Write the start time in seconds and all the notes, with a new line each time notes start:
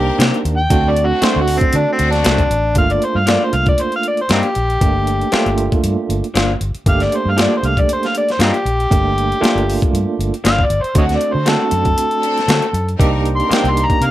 Already playing: A#3 C4 D4 D#4 G4 A#4
0.19 C3 D#3 A#3 C4 G4, snare, closed hi-hat
0.34 closed hi-hat
0.45 D#2, closed hi-hat
0.57 G5
0.70 D2 A3 C4 D4 F#4, kick, closed hi-hat
0.91 D5
0.96 closed hi-hat
1.06 C4 D4 F#4
1.10 F#4
1.22 A3 C4 D4 F#4 C5, muted fingered electric bass stroke, snare, closed hi-hat
1.36 D2
1.42 F#4
1.48 open hi-hat
1.58 C4, kick, closed hi-hat
1.73 D3 D4, closed hi-hat
1.92 C4
1.98 D2 C4 D4 F#4, closed hi-hat
2.11 D4, snare, closed hi-hat
2.24 C2 A3 C4 F#4, snare, closed hi-hat
2.38 kick, closed hi-hat
2.51 A1, closed hi-hat
2.75 G1 A3 A#3 D4 F4 F5, kick, closed hi-hat
2.90 D5, closed hi-hat
3.02 C5, closed hi-hat
3.15 G2 F5
3.26 F3 A3 A#3 D4 F4 D5, snare, closed hi-hat
3.43 C5
3.53 C2 F5, closed hi-hat
3.66 D5, kick, closed hi-hat
3.78 C5, closed hi-hat
3.92 F5, closed hi-hat
4.03 closed hi-hat
4.07 D5
4.17 C5, closed hi-hat
4.29 G2 F3 A#3 C4 D4 D#4 F4 G4, snare, closed hi-hat
4.43 closed hi-hat
4.55 A#1, closed hi-hat
4.70 closed hi-hat
4.81 G1 A3 A#3 D4 G4, kick, closed hi-hat
5.07 closed hi-hat
5.21 closed hi-hat
5.32 F3 A3 A#3 D4 F4, muted fingered electric bass stroke, snare, closed hi-hat
5.46 G1, closed hi-hat
5.58 closed hi-hat
5.72 kick, closed hi-hat
5.84 G2, closed hi-hat
6.09 G1, closed hi-hat
6.24 closed hi-hat
6.34 G1 F3 A#3 D4 F4, snare, closed hi-hat
6.61 G1, closed hi-hat
6.75 muted fingered electric bass stroke, closed hi-hat
6.86 G1 A3 A#3 D4 G4 F5, kick, closed hi-hat
7.00 D5, snare, closed hi-hat
7.12 C5, closed hi-hat
7.25 G2
7.30 F5
7.37 F3 A3 A#3 D4 F4 G4, snare, closed hi-hat
7.42 D5
7.57 C5
7.63 C2 F5, closed hi-hat
7.77 D5, kick, closed hi-hat
7.89 C5, closed hi-hat
8.03 F5, snare, closed hi-hat
8.15 D5, closed hi-hat
8.29 C5, snare, closed hi-hat
8.39 G2 F3 A#3 D4 F4, snare, closed hi-hat
8.43 C4 D#4 G4
8.54 closed hi-hat
8.65 A#1, closed hi-hat
8.80 closed hi-hat
8.90 G1 A3 A#3 D4 G4, kick, closed hi-hat
9.18 closed hi-hat
9.32 closed hi-hat
9.41 F3 A3 A#3 D4 F4, muted fingered electric bass stroke, closed hi-hat
9.45 snare
9.55 G1, closed hi-hat
9.70 open hi-hat
9.82 kick, closed hi-hat
9.93 G2, closed hi-hat
10.19 G1, closed hi-hat
10.34 closed hi-hat
10.44 G1 F3 A#3 D4 F4 F5, snare, closed hi-hat
10.59 kick
10.65 D5
10.70 G1, closed hi-hat
10.82 C5, closed hi-hat
10.95 D2 A3 C4 D4 F#4 C#5 D#5 F#5, kick, closed hi-hat
11.09 snare, closed hi-hat
11.17 D5
11.21 closed hi-hat
11.33 D3 C4 D4 F#4 C5
11.46 A3 C4 D4 F#4 A4, snare, closed hi-hat
11.71 F#2, closed hi-hat
11.85 kick, closed hi-hat
11.98 closed hi-hat
12.11 closed hi-hat
12.21 C4 D4 A4, closed hi-hat
12.38 snare, closed hi-hat
12.48 D3 A3 C4 F#4, snare, closed hi-hat
12.62 closed hi-hat
12.73 F#2, closed hi-hat
12.89 closed hi-hat
12.98 C2 A#3 C4 D4 D#4 G4 A#4, kick, closed hi-hat
13.26 closed hi-hat
13.36 C4 A#4 C6, closed hi-hat
13.49 D#3 A#3 C4 D4 D#4 G4, muted fingered electric bass stroke, closed hi-hat
13.53 G5, snare
13.64 C2, closed hi-hat
13.70 C6
13.77 closed hi-hat
13.86 A#5, kick, closed hi-hat
14.01 C3, closed hi-hat
14.05 F5